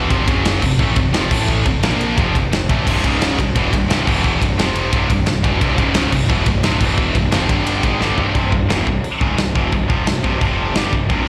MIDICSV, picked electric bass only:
0, 0, Header, 1, 2, 480
1, 0, Start_track
1, 0, Tempo, 343643
1, 154, Time_signature, 4, 2, 24, 8
1, 15756, End_track
2, 0, Start_track
2, 0, Title_t, "Picked electric bass"
2, 0, Program_c, 0, 34
2, 144, Note_on_c, 0, 29, 112
2, 373, Note_off_c, 0, 29, 0
2, 385, Note_on_c, 0, 30, 109
2, 839, Note_off_c, 0, 30, 0
2, 870, Note_on_c, 0, 29, 83
2, 1098, Note_off_c, 0, 29, 0
2, 1107, Note_on_c, 0, 33, 110
2, 1337, Note_off_c, 0, 33, 0
2, 1345, Note_on_c, 0, 29, 80
2, 1577, Note_off_c, 0, 29, 0
2, 1585, Note_on_c, 0, 29, 102
2, 1817, Note_off_c, 0, 29, 0
2, 1837, Note_on_c, 0, 33, 103
2, 2288, Note_off_c, 0, 33, 0
2, 2316, Note_on_c, 0, 29, 78
2, 2544, Note_off_c, 0, 29, 0
2, 2570, Note_on_c, 0, 34, 99
2, 3016, Note_off_c, 0, 34, 0
2, 3039, Note_on_c, 0, 29, 106
2, 3266, Note_off_c, 0, 29, 0
2, 3282, Note_on_c, 0, 29, 85
2, 3508, Note_off_c, 0, 29, 0
2, 3541, Note_on_c, 0, 29, 92
2, 3759, Note_off_c, 0, 29, 0
2, 3771, Note_on_c, 0, 33, 98
2, 3994, Note_off_c, 0, 33, 0
2, 4008, Note_on_c, 0, 24, 102
2, 4232, Note_off_c, 0, 24, 0
2, 4246, Note_on_c, 0, 25, 99
2, 4694, Note_off_c, 0, 25, 0
2, 4731, Note_on_c, 0, 24, 85
2, 4953, Note_off_c, 0, 24, 0
2, 4975, Note_on_c, 0, 28, 109
2, 5195, Note_off_c, 0, 28, 0
2, 5208, Note_on_c, 0, 24, 88
2, 5426, Note_off_c, 0, 24, 0
2, 5435, Note_on_c, 0, 24, 105
2, 5664, Note_off_c, 0, 24, 0
2, 5693, Note_on_c, 0, 28, 104
2, 6137, Note_off_c, 0, 28, 0
2, 6173, Note_on_c, 0, 24, 85
2, 6394, Note_off_c, 0, 24, 0
2, 6405, Note_on_c, 0, 29, 97
2, 6852, Note_off_c, 0, 29, 0
2, 6886, Note_on_c, 0, 24, 97
2, 7109, Note_off_c, 0, 24, 0
2, 7125, Note_on_c, 0, 24, 83
2, 7349, Note_off_c, 0, 24, 0
2, 7363, Note_on_c, 0, 24, 89
2, 7587, Note_off_c, 0, 24, 0
2, 7602, Note_on_c, 0, 28, 97
2, 7826, Note_off_c, 0, 28, 0
2, 7838, Note_on_c, 0, 24, 100
2, 8064, Note_off_c, 0, 24, 0
2, 8080, Note_on_c, 0, 25, 102
2, 8528, Note_off_c, 0, 25, 0
2, 8553, Note_on_c, 0, 24, 80
2, 8780, Note_off_c, 0, 24, 0
2, 8796, Note_on_c, 0, 28, 101
2, 9022, Note_off_c, 0, 28, 0
2, 9035, Note_on_c, 0, 24, 85
2, 9261, Note_off_c, 0, 24, 0
2, 9271, Note_on_c, 0, 24, 96
2, 9499, Note_off_c, 0, 24, 0
2, 9510, Note_on_c, 0, 28, 92
2, 9961, Note_off_c, 0, 28, 0
2, 9990, Note_on_c, 0, 24, 87
2, 10217, Note_off_c, 0, 24, 0
2, 10231, Note_on_c, 0, 29, 94
2, 10458, Note_off_c, 0, 29, 0
2, 10470, Note_on_c, 0, 31, 91
2, 10920, Note_off_c, 0, 31, 0
2, 10940, Note_on_c, 0, 32, 108
2, 11171, Note_off_c, 0, 32, 0
2, 11185, Note_on_c, 0, 31, 95
2, 11414, Note_off_c, 0, 31, 0
2, 11428, Note_on_c, 0, 24, 107
2, 11655, Note_off_c, 0, 24, 0
2, 11671, Note_on_c, 0, 24, 98
2, 11897, Note_off_c, 0, 24, 0
2, 11904, Note_on_c, 0, 24, 84
2, 12133, Note_off_c, 0, 24, 0
2, 12149, Note_on_c, 0, 28, 94
2, 12375, Note_off_c, 0, 28, 0
2, 12390, Note_on_c, 0, 24, 79
2, 12616, Note_off_c, 0, 24, 0
2, 12860, Note_on_c, 0, 25, 100
2, 13090, Note_off_c, 0, 25, 0
2, 13109, Note_on_c, 0, 24, 86
2, 13335, Note_off_c, 0, 24, 0
2, 13349, Note_on_c, 0, 28, 90
2, 13575, Note_off_c, 0, 28, 0
2, 13588, Note_on_c, 0, 24, 85
2, 13814, Note_off_c, 0, 24, 0
2, 13822, Note_on_c, 0, 29, 96
2, 14051, Note_off_c, 0, 29, 0
2, 14077, Note_on_c, 0, 24, 81
2, 14299, Note_off_c, 0, 24, 0
2, 14305, Note_on_c, 0, 24, 90
2, 14532, Note_off_c, 0, 24, 0
2, 14544, Note_on_c, 0, 29, 95
2, 14995, Note_off_c, 0, 29, 0
2, 15031, Note_on_c, 0, 31, 102
2, 15250, Note_off_c, 0, 31, 0
2, 15258, Note_on_c, 0, 24, 90
2, 15489, Note_off_c, 0, 24, 0
2, 15510, Note_on_c, 0, 24, 95
2, 15735, Note_off_c, 0, 24, 0
2, 15756, End_track
0, 0, End_of_file